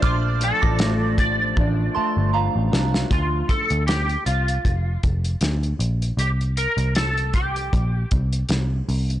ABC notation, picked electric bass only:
X:1
M:4/4
L:1/16
Q:"Swing 16ths" 1/4=78
K:Dm
V:1 name="Picked electric bass" clef=bass
B,,,3 A,,,4- A,,, A,,,2 z G,,,2 A,,, C,,2 | D,,2 z D,,3 C,,2 F,,,2 F,,,2 D,,2 B,,,2 | C,,3 C,,4- C,, B,,,2 C,,2 C,,2 C,,2 |]